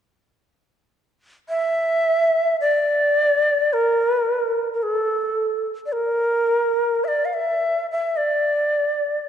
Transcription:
1.49 2.56 E5 medium
2.61 3.75 D5 medium
3.73 4.73 A#4 medium
4.73 4.84 A#4 soft
4.83 5.65 A4 medium
5.86 5.95 D5 soft
5.93 7.06 A#4 medium
7.04 7.27 D5 medium
7.04 7.09 E5 medium
7.25 7.35 F5 soft
7.34 7.89 E5 medium
7.91 8.18 E5 medium
8.17 9.29 D5 medium

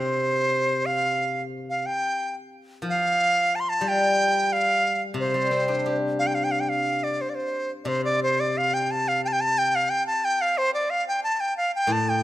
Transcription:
0.00 1.84 C3 medium
0.00 0.87 C5 medium
0.86 1.42 F5 medium
1.70 1.88 F5 medium
1.86 2.36 G5 medium
2.82 4.82 F3 soft
2.89 3.57 F5 medium
3.55 3.62 A5 medium
3.60 3.71 C6 medium
3.69 3.90 A5 medium
3.81 5.33 G3 medium
3.88 4.54 G5 medium
4.53 5.01 F5 medium
5.14 7.18 C3 medium
5.20 5.97 C5 medium
5.34 6.69 G3 soft
5.51 6.86 C4 soft
5.68 7.03 D4 soft
5.86 7.20 G4 soft
6.19 6.28 F5 medium
6.27 6.36 G5 medium
6.35 6.45 F5 medium
6.44 6.53 G5 medium
6.51 6.62 F5 medium
6.60 6.71 G5 medium
6.69 7.05 F5 medium
7.03 7.23 D5 medium
7.21 7.31 C5 medium
7.30 7.36 D5 soft
7.35 7.71 C5 medium
7.84 9.87 C3 medium
7.84 8.04 C5 medium
7.84 7.89 D5 medium
8.05 8.20 D5 medium
8.23 8.41 C5 medium
8.40 8.59 D5 medium
8.58 8.75 F5 medium
8.74 8.92 G5 medium
8.91 9.10 A5 medium
9.08 9.23 F5 medium
9.25 9.28 G5 medium
9.25 9.34 A5 medium
9.33 9.42 G5 medium
9.41 9.60 A5 medium
9.58 9.77 G5 medium
9.75 9.91 F5 medium
9.90 10.06 G5 medium
10.07 10.26 A5 medium
10.25 10.43 G5 medium
10.41 10.59 F5 medium
10.58 10.73 C5 medium
10.74 10.92 D5 medium
10.90 11.06 F5 medium
11.08 11.23 G5 medium
11.23 11.35 A5 medium
11.35 11.42 A5 medium
11.40 11.56 G5 medium
11.57 11.72 F5 medium
11.75 11.94 G5 medium
11.87 12.23 A2 medium
11.92 12.11 A5 medium
12.09 12.23 G5 medium

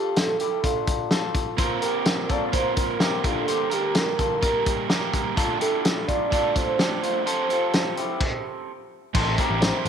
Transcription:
0.00 0.38 F4 soft
0.00 0.20 G4 medium
0.00 0.38 A4 medium
0.16 0.40 A4 medium
0.16 snare loud
0.16 closed hi-hat medium
0.40 0.65 E4 soft
0.40 0.64 G4 medium
0.40 1.08 A4 medium
0.40 closed hi-hat medium
0.64 1.09 D4 soft
0.64 1.09 F4 medium
0.64 kick medium
0.64 closed hi-hat medium
0.87 kick medium
0.87 closed hi-hat medium
1.11 1.56 F4 soft
1.11 1.56 A4 medium
1.11 snare medium
1.11 closed hi-hat medium
1.35 kick medium
1.35 closed hi-hat medium
1.57 2.52 A#3 medium
1.57 2.52 C4 medium
1.57 2.52 F4 medium
1.57 1.82 F4 medium
1.57 2.54 A#4 medium
1.57 1.82 C5 medium
1.57 kick medium
1.57 closed hi-hat medium
1.82 2.27 G4 medium
1.82 2.27 A#4 medium
1.82 2.31 A#4 medium
1.82 closed hi-hat medium
2.05 snare loud
2.05 closed hi-hat medium
2.29 2.53 F4 medium
2.29 2.53 A4 medium
2.29 2.52 D5 loud
2.29 kick medium
2.29 closed hi-hat medium
2.52 2.99 A#3 soft
2.52 2.99 C4 medium
2.52 3.00 F4 medium
2.52 2.98 F4 medium
2.52 2.98 A#4 medium
2.52 3.01 A#4 medium
2.52 2.75 C5 loud
2.52 kick medium
2.52 closed hi-hat medium
2.77 3.26 A#4 loud
2.77 kick medium
2.77 closed hi-hat medium
2.99 3.23 A#3 soft
2.99 3.23 C4 soft
2.99 3.25 C4 soft
2.99 3.23 F4 medium
2.99 3.24 G4 medium
2.99 3.25 A#4 medium
2.99 snare medium
2.99 closed hi-hat medium
3.24 3.72 G2 soft
3.24 5.35 D3 soft
3.24 3.71 G3 medium
3.24 3.70 A#3 medium
3.24 3.49 D4 medium
3.24 3.48 F4 medium
3.24 3.70 G4 medium
3.24 3.73 A4 medium
3.24 kick medium
3.24 closed hi-hat medium
3.48 3.71 G4 medium
3.48 3.72 C5 medium
3.48 closed hi-hat medium
3.70 4.40 G3 soft
3.70 4.40 A#3 soft
3.70 4.41 G4 soft
3.70 3.98 G4 medium
3.70 4.17 G4 medium
3.70 4.42 A#4 soft
3.70 4.16 A#4 medium
3.70 closed hi-hat medium
3.95 4.19 A#4 medium
3.95 snare loud
3.95 closed hi-hat medium
4.19 4.43 F4 soft
4.19 4.42 A4 medium
4.19 4.87 A#4 medium
4.19 kick medium
4.19 closed hi-hat medium
4.41 4.88 G3 medium
4.41 4.88 A#3 medium
4.41 4.89 G4 medium
4.41 4.87 G4 soft
4.41 4.87 A#4 medium
4.41 4.90 A#4 medium
4.41 kick medium
4.41 closed hi-hat medium
4.66 kick medium
4.66 closed hi-hat medium
4.89 5.36 G3 medium
4.89 5.36 A#3 medium
4.89 5.37 G4 medium
4.89 5.35 G4 medium
4.89 5.34 A#4 medium
4.89 5.37 A#4 medium
4.89 snare medium
4.89 closed hi-hat medium
5.14 kick medium
5.14 closed hi-hat medium
5.36 5.60 D3 medium
5.36 5.60 A3 medium
5.36 5.61 D4 medium
5.36 5.59 F4 medium
5.36 5.60 F4 medium
5.36 5.61 A4 medium
5.36 5.58 A4 medium
5.36 kick medium
5.36 closed hi-hat medium
5.59 6.30 D4 soft
5.59 6.05 E4 medium
5.59 6.32 F4 soft
5.59 6.05 G4 medium
5.59 6.32 A4 soft
5.59 6.05 A4 medium
5.59 closed hi-hat medium
5.85 snare loud
5.85 closed hi-hat medium
6.08 6.32 D4 medium
6.08 6.31 F4 medium
6.08 6.57 D5 loud
6.08 kick medium
6.08 closed hi-hat medium
6.30 6.78 A3 medium
6.30 6.78 D4 medium
6.30 6.76 F4 medium
6.30 6.79 F4 medium
6.30 6.76 A4 medium
6.30 6.80 A4 medium
6.30 kick medium
6.30 closed hi-hat medium
6.56 7.03 C5 loud
6.56 kick medium
6.56 closed hi-hat medium
6.78 7.25 A3 medium
6.78 7.26 D4 medium
6.78 7.02 D4 medium
6.78 7.26 F4 medium
6.78 7.02 G4 medium
6.78 7.27 A4 medium
6.78 snare medium
6.78 closed hi-hat medium
7.03 7.27 D4 medium
7.03 7.26 F4 medium
7.03 7.25 C5 medium
7.03 closed hi-hat medium
7.26 7.50 F3 medium
7.26 7.50 C4 medium
7.26 7.49 G4 medium
7.26 7.49 A4 medium
7.26 7.48 A4 medium
7.26 8.64 C5 medium
7.26 7.50 C5 medium
7.26 closed hi-hat medium
7.49 8.71 C4 soft
7.49 7.95 F4 medium
7.49 8.71 G4 soft
7.49 8.71 A4 soft
7.49 7.94 A4 medium
7.49 closed hi-hat medium
7.73 snare loud
7.73 closed hi-hat medium
7.97 8.21 E4 medium
7.97 8.21 G4 medium
7.97 closed hi-hat medium
8.21 kick medium
8.21 crash medium
9.14 9.35 A1 loud
9.14 9.50 A3 medium
9.14 9.50 C4 medium
9.14 9.49 E4 medium
9.14 9.48 G4 medium
9.14 9.39 A4 medium
9.14 9.38 C5 medium
9.14 kick loud
9.14 crash medium
9.38 9.83 G4 medium
9.38 9.83 A#4 medium
9.38 kick medium
9.38 closed hi-hat medium
9.49 9.70 A1 medium
9.49 9.74 C4 soft
9.49 9.73 E4 soft
9.49 9.72 G4 soft
9.61 9.89 C5 loud
9.61 snare loud
9.61 closed hi-hat medium
9.73 9.89 C4 soft
9.73 9.89 E4 soft
9.73 9.89 G4 medium
9.85 9.89 A1 medium
9.85 9.89 A4 medium
9.85 closed hi-hat medium

